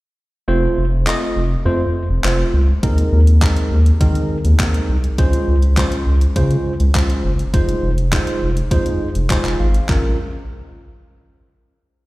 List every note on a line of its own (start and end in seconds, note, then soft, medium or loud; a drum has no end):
0.48 0.68 F1 loud
0.48 0.84 A3 medium
0.48 0.84 C4 medium
0.48 0.84 F4 medium
0.48 0.84 C5 loud
0.77 1.08 F1 medium
1.07 1.43 A3 medium
1.07 1.43 C4 medium
1.07 1.43 F4 medium
1.07 1.43 D#5 loud
1.07 clap loud
1.36 1.57 F1 medium
1.65 1.86 F2 loud
1.65 2.01 A3 medium
1.65 2.02 C4 medium
1.65 2.02 F4 medium
1.65 2.02 C5 loud
2.10 2.20 F1 medium
2.24 2.45 F1 loud
2.24 2.60 A3 medium
2.24 2.60 C4 medium
2.24 2.60 F4 medium
2.24 2.61 C5 medium
2.24 clap loud
2.54 2.74 C#2 medium
2.83 3.03 D#2 loud
2.83 3.19 G#3 medium
2.83 3.19 C4 medium
2.83 3.19 D#4 medium
2.83 3.19 A#4 loud
2.83 kick loud
2.83 closed hi-hat medium
2.98 closed hi-hat medium
3.12 3.43 D#2 loud
3.27 closed hi-hat medium
3.42 3.78 G#3 medium
3.42 3.78 C4 medium
3.42 3.78 D#4 medium
3.42 3.78 A#4 loud
3.42 kick loud
3.42 clap loud
3.42 closed hi-hat medium
3.57 closed hi-hat medium
3.71 3.92 D#2 medium
3.86 closed hi-hat medium
4.01 4.21 D#3 loud
4.01 4.37 G#3 medium
4.01 4.37 C4 medium
4.01 4.37 D#4 medium
4.01 4.37 A#4 loud
4.01 kick loud
4.01 closed hi-hat medium
4.15 closed hi-hat soft
4.45 4.55 D#2 medium
4.45 closed hi-hat medium
4.59 4.80 D#2 loud
4.59 4.96 G#3 medium
4.59 4.96 C4 medium
4.59 4.96 D#4 medium
4.59 4.96 A#4 medium
4.59 kick loud
4.59 clap loud
4.59 closed hi-hat medium
4.74 closed hi-hat medium
4.89 5.10 C2 medium
5.04 closed hi-hat soft
5.18 5.39 C#2 loud
5.18 5.54 G#3 medium
5.18 5.55 C#4 medium
5.18 5.55 F4 medium
5.18 5.55 C5 loud
5.18 kick loud
5.18 closed hi-hat medium
5.33 closed hi-hat medium
5.48 5.79 C#2 medium
5.62 closed hi-hat medium
5.77 6.13 G#3 medium
5.77 6.13 C#4 medium
5.77 6.13 F4 medium
5.77 6.13 C5 loud
5.77 kick loud
5.77 clap loud
5.77 closed hi-hat medium
5.92 closed hi-hat medium
6.07 6.27 C#2 medium
6.21 closed hi-hat medium
6.36 6.56 C#3 loud
6.36 6.72 G#3 medium
6.36 6.72 C#4 medium
6.36 6.72 F4 medium
6.36 6.72 C5 medium
6.36 kick loud
6.36 closed hi-hat medium
6.51 closed hi-hat soft
6.80 6.90 C#2 medium
6.80 closed hi-hat medium
6.95 7.15 C#2 medium
6.95 7.31 G#3 medium
6.95 7.31 C#4 medium
6.95 7.31 F4 medium
6.95 7.31 C5 medium
6.95 kick loud
6.95 clap loud
6.95 closed hi-hat medium
7.10 closed hi-hat medium
7.24 7.45 F#1 medium
7.39 closed hi-hat soft
7.54 7.74 F1 loud
7.54 7.90 G#3 medium
7.54 7.90 D#4 medium
7.54 7.90 F4 medium
7.54 7.90 C5 loud
7.54 kick loud
7.54 closed hi-hat medium
7.69 closed hi-hat medium
7.83 8.14 F1 loud
7.98 closed hi-hat medium
8.12 8.49 G#3 medium
8.12 8.49 D#4 medium
8.12 8.49 F4 medium
8.12 8.49 C5 loud
8.12 kick loud
8.12 clap loud
8.12 closed hi-hat medium
8.27 closed hi-hat medium
8.42 8.62 F1 medium
8.57 closed hi-hat medium
8.71 8.92 F2 loud
8.71 9.07 G#3 medium
8.71 9.07 D#4 medium
8.71 9.07 F4 medium
8.71 9.07 C5 loud
8.71 kick loud
8.71 closed hi-hat medium
8.86 closed hi-hat medium
9.15 9.36 F1 medium
9.15 closed hi-hat medium
9.30 9.66 G#3 medium
9.30 9.66 D#4 medium
9.30 9.66 F4 medium
9.30 9.66 C5 medium
9.30 9.58 G#5 medium
9.30 kick loud
9.30 clap loud
9.30 closed hi-hat medium
9.45 9.55 F1 medium
9.45 clap medium
9.45 closed hi-hat medium
9.60 9.80 G#1 medium
9.60 9.87 F5 medium
9.74 closed hi-hat medium
9.89 10.16 A#1 loud
9.89 10.16 G#3 medium
9.89 10.16 C#4 medium
9.89 10.16 F4 medium
9.89 10.16 A#4 medium
9.89 kick loud
9.89 clap medium